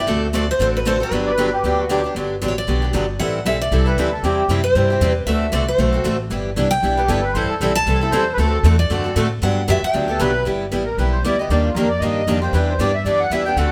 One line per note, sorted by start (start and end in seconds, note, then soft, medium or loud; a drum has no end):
0.00 0.21 D5 loud
0.07 0.49 D2 medium
0.07 0.26 D3 medium
0.07 0.26 A3 medium
0.07 0.26 C4 medium
0.07 0.26 F#4 medium
0.07 0.26 A4 medium
0.33 0.44 D3 medium
0.33 0.44 A3 medium
0.33 0.44 C4 medium
0.33 0.44 F#4 medium
0.33 0.44 A4 medium
0.33 0.50 D5 medium
0.51 0.60 C5 medium
0.59 1.01 A1 medium
0.59 0.78 D3 medium
0.59 0.78 A3 medium
0.59 0.78 C4 medium
0.59 0.79 F#4 medium
0.59 0.79 A4 medium
0.59 0.67 C5 medium
0.77 0.87 B4 medium
0.86 0.96 D3 medium
0.86 0.96 A3 medium
0.86 0.96 C4 medium
0.86 0.97 F#4 medium
0.86 0.97 A4 medium
0.86 1.02 C5 medium
1.00 1.12 C4 soft
1.00 1.12 F#4 soft
1.00 1.11 A4 medium
1.00 2.02 B4 medium
1.11 1.53 G1 medium
1.11 1.30 D3 medium
1.11 1.30 F#3 medium
1.11 1.30 B3 medium
1.11 1.31 D4 medium
1.11 1.31 G4 medium
1.26 1.32 D5 medium
1.31 1.53 B4 loud
1.38 1.48 D3 medium
1.38 1.48 F#3 medium
1.38 1.48 B3 medium
1.38 1.49 D4 medium
1.38 1.49 G4 medium
1.53 1.63 G4 medium
1.63 2.05 D2 medium
1.63 1.82 D3 medium
1.63 1.82 F#3 medium
1.63 1.83 B3 medium
1.63 1.83 D4 medium
1.63 1.79 G4 medium
1.63 1.83 G4 medium
1.79 1.90 F#4 medium
1.89 2.00 D3 medium
1.89 2.00 F#3 medium
1.89 2.00 B3 medium
1.89 2.00 D4 medium
1.89 2.14 G4 medium
1.89 2.00 G4 medium
2.04 2.15 B3 soft
2.04 2.15 D4 soft
2.04 2.15 G4 soft
2.15 2.40 G1 medium
2.15 2.34 D3 medium
2.15 2.34 F#3 medium
2.15 2.34 B3 medium
2.15 2.34 D4 medium
2.15 2.34 G4 medium
2.42 2.67 A1 medium
2.42 2.52 D3 medium
2.42 2.52 F#3 medium
2.42 2.52 B3 medium
2.42 2.52 D4 medium
2.42 2.52 G4 medium
2.48 2.56 C#5 medium
2.58 3.16 D5 medium
2.68 2.93 B1 medium
2.68 2.82 D3 medium
2.68 2.82 F#3 medium
2.68 2.82 B3 medium
2.68 2.82 D4 medium
2.68 2.81 G4 medium
2.82 2.93 B3 soft
2.82 2.93 D4 soft
2.82 2.93 G4 medium
2.93 3.18 G1 medium
2.93 3.04 D3 medium
2.93 3.04 F#3 medium
2.93 3.04 B3 medium
2.93 3.04 D4 medium
2.93 3.04 G4 medium
3.19 3.44 A1 medium
3.19 3.38 E3 medium
3.19 3.38 G3 medium
3.19 3.38 C4 medium
3.19 3.38 E4 medium
3.19 3.39 A4 medium
3.19 3.44 F#5 medium
3.45 3.70 B1 medium
3.45 3.56 E3 medium
3.45 3.56 G3 medium
3.45 3.56 C4 medium
3.45 3.56 E4 medium
3.45 3.56 A4 medium
3.45 3.60 E5 medium
3.61 4.09 D5 medium
3.71 3.96 C2 medium
3.71 3.86 E3 medium
3.71 3.86 G3 medium
3.71 3.86 C4 medium
3.71 3.86 E4 medium
3.71 3.85 A4 medium
3.86 3.97 C4 soft
3.86 3.97 E4 medium
3.86 3.97 A4 medium
3.86 4.13 B4 medium
3.97 4.22 D2 medium
3.97 4.08 E3 medium
3.97 4.08 G3 medium
3.97 4.08 C4 medium
3.97 4.08 E4 medium
3.97 4.08 A4 medium
4.12 4.24 A4 medium
4.23 4.48 E2 medium
4.23 4.42 C3 medium
4.23 4.42 G3 medium
4.23 4.42 C4 medium
4.23 4.42 E4 medium
4.23 4.54 G4 medium
4.23 4.42 G4 medium
4.48 4.74 F#2 medium
4.48 4.60 C3 medium
4.48 4.60 G3 medium
4.48 4.60 C4 medium
4.48 4.60 E4 medium
4.48 4.60 G4 medium
4.64 5.10 C5 medium
4.75 5.00 G2 medium
4.75 4.89 C3 medium
4.75 4.90 G3 medium
4.75 4.90 C4 medium
4.75 4.90 E4 medium
4.75 4.89 G4 medium
4.90 5.00 C4 soft
4.90 5.01 E4 soft
4.90 5.01 G4 medium
5.00 5.26 E2 medium
5.00 5.11 C3 medium
5.00 5.12 G3 medium
5.00 5.12 C4 medium
5.00 5.12 E4 medium
5.00 5.12 G4 medium
5.10 5.29 B4 medium
5.26 5.52 D2 medium
5.26 5.45 D3 medium
5.26 5.46 A3 medium
5.26 5.46 C4 medium
5.26 5.46 F#4 medium
5.26 5.46 A4 medium
5.26 5.54 E5 medium
5.52 5.78 C2 medium
5.52 5.63 D3 medium
5.52 5.63 A3 medium
5.52 5.63 C4 medium
5.52 5.63 F#4 medium
5.52 5.63 A4 medium
5.52 5.68 D5 medium
5.68 6.16 C5 medium
5.78 6.03 B1 medium
5.78 5.93 D3 medium
5.78 5.93 A3 medium
5.78 5.93 C4 medium
5.78 5.93 F#4 medium
5.78 5.91 A4 medium
5.92 6.04 C4 soft
5.92 6.04 F#4 medium
5.92 6.04 A4 medium
6.04 6.29 A1 medium
6.04 6.15 D3 medium
6.04 6.15 A3 medium
6.04 6.15 C4 medium
6.04 6.15 F#4 medium
6.04 6.16 A4 medium
6.30 6.56 G1 medium
6.30 6.49 E3 medium
6.30 6.49 G3 medium
6.30 6.49 B3 medium
6.30 6.49 D4 medium
6.30 6.49 E4 medium
6.30 6.50 G4 medium
6.30 6.49 B4 medium
6.56 6.82 C2 medium
6.56 6.67 E3 medium
6.56 6.67 G3 medium
6.56 6.67 B3 medium
6.56 6.67 D4 medium
6.56 6.68 E4 medium
6.56 6.67 G4 loud
6.56 6.68 B4 medium
6.71 7.30 G5 loud
6.83 7.08 B1 medium
6.83 6.97 E3 medium
6.83 7.01 G3 medium
6.83 6.97 B3 medium
6.83 6.97 D4 medium
6.83 7.01 E4 medium
6.83 6.96 G4 medium
6.83 7.01 B4 medium
6.97 7.08 B3 soft
6.97 7.09 D4 soft
6.97 7.08 G4 medium
6.97 7.03 B4 medium
7.03 7.09 G4 medium
7.08 7.34 G1 medium
7.08 7.19 E3 medium
7.08 7.19 G3 loud
7.08 7.19 B3 medium
7.08 7.19 D4 medium
7.08 7.19 E4 loud
7.08 7.20 G4 medium
7.08 7.24 A4 medium
7.08 7.19 B4 loud
7.22 7.34 B4 medium
7.34 7.48 A1 medium
7.34 7.53 E3 medium
7.34 7.53 G3 medium
7.34 7.53 C4 medium
7.34 7.54 E4 medium
7.34 7.54 A4 medium
7.34 7.49 C5 medium
7.49 7.66 A4 medium
7.49 muted upright bass stroke soft
7.60 7.85 B1 medium
7.60 7.71 E3 medium
7.60 7.71 G3 medium
7.60 7.71 C4 medium
7.60 7.72 E4 medium
7.60 7.72 A4 medium
7.75 8.34 A5 loud
7.86 8.11 C2 medium
7.86 8.01 E3 medium
7.86 8.01 G3 medium
7.86 8.01 C4 medium
7.86 8.01 E4 medium
7.86 8.00 A4 medium
8.00 8.12 C4 soft
8.00 8.12 E4 medium
8.00 8.12 A4 medium
8.11 8.37 E2 medium
8.11 8.23 E3 medium
8.11 8.23 G3 medium
8.11 8.23 C4 loud
8.11 8.23 E4 loud
8.11 8.23 A4 medium
8.11 8.33 C5 loud
8.33 8.69 A4 medium
8.33 8.38 B4 loud
8.37 8.63 D2 medium
8.37 8.56 D3 medium
8.37 8.56 A3 medium
8.37 8.57 C4 medium
8.37 8.57 F#4 medium
8.37 8.57 A4 medium
8.63 8.89 E2 loud
8.63 8.74 D3 medium
8.63 8.75 A3 medium
8.63 8.75 C4 medium
8.63 8.75 F#4 medium
8.63 8.75 A4 medium
8.79 9.27 D5 medium
8.90 9.15 F#2 medium
8.90 9.04 D3 medium
8.90 9.04 A3 medium
8.90 9.04 C4 medium
8.90 9.04 F#4 medium
8.90 9.03 A4 medium
9.04 9.15 C4 soft
9.04 9.15 F#4 soft
9.04 9.15 A4 medium
9.16 9.41 A2 medium
9.16 9.26 D3 medium
9.16 9.26 A3 medium
9.16 9.26 C4 medium
9.16 9.27 F#4 medium
9.16 9.27 A4 loud
9.42 9.67 G2 medium
9.42 9.60 D3 medium
9.42 9.60 F#3 medium
9.42 9.61 B3 medium
9.42 9.61 D4 medium
9.42 9.61 G4 medium
9.42 9.67 F#5 loud
9.68 9.82 F#2 loud
9.68 9.78 D3 medium
9.68 9.78 F#3 medium
9.68 9.78 B3 medium
9.68 9.78 D4 medium
9.68 9.79 G4 loud
9.68 9.83 E5 loud
9.83 10.32 G5 medium
9.83 muted upright bass stroke soft
9.94 10.19 D2 medium
9.94 10.08 D3 medium
9.94 10.08 F#3 medium
9.94 10.08 B3 medium
9.94 10.08 D4 medium
9.94 10.07 G4 medium
10.08 10.19 B3 soft
10.08 10.19 D4 medium
10.08 10.19 G4 medium
10.08 10.21 A4 medium
10.19 10.44 B1 loud
10.19 10.30 D3 medium
10.19 10.30 F#3 medium
10.19 10.30 B3 medium
10.19 10.30 D4 medium
10.19 10.31 G4 loud
10.19 10.44 B4 loud
10.45 10.71 G1 medium
10.45 10.64 G3 medium
10.45 10.64 B3 medium
10.45 10.65 E4 medium
10.45 10.65 G4 medium
10.71 10.97 A1 medium
10.71 10.82 G3 medium
10.71 10.82 B3 medium
10.71 10.82 E4 medium
10.71 10.83 G4 medium
10.85 10.97 A#4 medium
10.97 11.22 B1 medium
10.97 11.16 G3 medium
10.97 11.17 B3 medium
10.97 11.17 E4 medium
10.97 11.17 G4 medium
10.97 11.12 B4 medium
11.12 11.23 C5 medium
11.23 11.49 D2 medium
11.23 11.34 G3 medium
11.23 11.34 B3 medium
11.23 11.35 E4 medium
11.23 11.35 G4 medium
11.23 11.38 D5 medium
11.38 11.50 B3 soft
11.38 11.50 E4 soft
11.38 11.50 G4 soft
11.38 11.49 D#5 medium
11.49 11.74 D#2 medium
11.49 11.68 D#3 medium
11.49 11.68 G3 medium
11.49 11.69 A#3 medium
11.49 11.69 D4 medium
11.49 11.69 G4 medium
11.49 11.64 D5 medium
11.65 11.75 F4 soft
11.75 12.00 F2 medium
11.75 11.86 D#3 medium
11.75 11.86 G3 medium
11.75 11.87 A#3 medium
11.75 11.87 D4 medium
11.75 11.87 G4 medium
11.75 11.89 A#4 medium
11.89 12.01 D5 medium
12.00 12.26 G2 medium
12.00 12.20 D#3 medium
12.00 12.20 G3 medium
12.00 12.20 A#3 medium
12.00 12.21 D4 medium
12.00 12.21 G4 medium
12.00 12.38 D#5 medium
12.27 12.52 F2 medium
12.27 12.38 D#3 medium
12.27 12.38 G3 medium
12.27 12.38 A#3 medium
12.27 12.38 D4 medium
12.27 12.38 G4 medium
12.41 12.54 A#3 soft
12.41 12.53 D4 soft
12.41 12.53 G4 medium
12.41 12.53 C5 medium
12.53 12.78 E2 medium
12.53 12.72 E3 medium
12.53 12.72 G3 medium
12.53 12.72 B3 medium
12.53 12.73 D4 medium
12.53 12.72 E4 medium
12.53 12.73 G4 medium
12.53 12.68 B4 medium
12.53 12.72 B4 medium
12.69 12.80 C5 medium
12.79 13.04 G2 medium
12.79 12.90 E3 medium
12.79 12.90 G3 medium
12.79 12.90 B3 medium
12.79 12.90 D4 medium
12.79 12.90 E4 medium
12.79 12.91 G4 medium
12.79 12.90 B4 loud
12.79 12.94 D5 medium
12.94 13.05 E5 medium
13.05 13.30 F#2 medium
13.05 13.24 E3 medium
13.05 13.24 G3 medium
13.05 13.24 B3 medium
13.05 13.24 D4 medium
13.05 13.24 E4 medium
13.05 13.25 G4 medium
13.05 13.24 B4 medium
13.05 13.20 D5 medium
13.20 13.31 F#5 loud
13.30 13.56 E2 medium
13.30 13.42 E3 medium
13.30 13.42 G3 loud
13.30 13.42 B3 medium
13.30 13.42 D4 medium
13.30 13.42 E4 medium
13.30 13.42 G4 medium
13.30 13.42 B4 medium
13.30 13.46 E5 medium
13.45 13.58 B3 soft
13.45 13.57 D4 soft
13.45 13.57 G4 medium
13.45 13.57 G5 loud
13.56 13.72 D2 medium
13.56 13.72 D3 medium
13.56 13.72 A3 medium
13.56 13.72 C4 medium
13.56 13.72 F#4 medium
13.56 13.72 A4 medium
13.56 13.72 F#5 medium